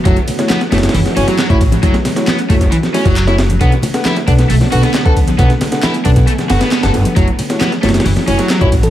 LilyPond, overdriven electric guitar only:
\new Staff \with { instrumentName = "Overdriven electric guitar" } { \time 4/4 \key fis \minor \tempo 4 = 135 fis16 r8. b16 r16 a16 r16 e16 r16 cis'16 fis16 fis16 e'16 r8 | fis16 r8. b16 r16 a16 r16 e16 r16 cis'16 fis16 fis16 e'16 r8 | b16 r8. e'16 r16 d'16 r16 a16 r16 fis'16 b16 b16 a'16 r8 | b16 r8. e'16 r16 d'16 r16 a16 r16 fis'16 b16 b16 a'16 r8 |
fis16 r8. b16 r16 a16 r16 e16 r16 cis'16 fis16 fis16 e'16 r8 | }